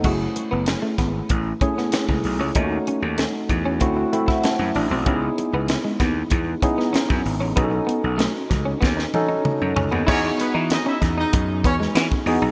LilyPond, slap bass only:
\new Staff \with { instrumentName = "Slap bass" } { \clef bass \time 4/4 \key e \major \tempo 4 = 96 fis,,8 r16 fis,,8 r16 gis,,8 a,,8 r8. cis,16 b,,16 cis,16 | dis,8 r16 dis,8 r16 e,8 d,8 r8. fis,16 a,,16 b,,16 | cis,8 r16 cis,8 r16 dis,8 e,8 r8. fis,16 gis,,16 a,,16 | b,,8 r16 b,,8 r16 cis,8 dis,8 r8. fis,16 cis,16 dis,16 |
e,8 r16 e8 r16 e,8 fis,8 e,8 e16 r16 e,16 b,,16 | }